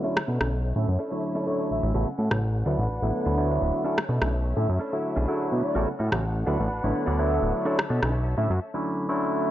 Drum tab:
SD |-r-r------------|---r------------|-r-r------------|---r------------|

SD |-r-r------------|